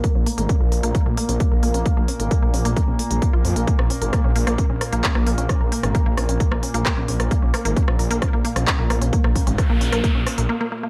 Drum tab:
HH |x-oxx-oxx-oxx-ox|x-oxx-oxx-oxx-ox|x-oxx-oxx-oxx-ox|x-oxx-oxx-oxx-ox|
CP |----------------|----------------|------------x---|------------x---|
SD |----------------|----------------|-r--r--r--r--r--|r--r--r--r--r--r|
BD |o---o---o---o---|o---o---o---o---|o---o---o---o---|o---o---o---o---|

HH |x-oxx-oxx-oxx-ox|x-oxx-oxx-ox----|
CP |------------x---|----------------|
SD |--r--r--r--r--r-|-r--r--r--r-----|
BD |o---o---o---o---|o-o-o---o-------|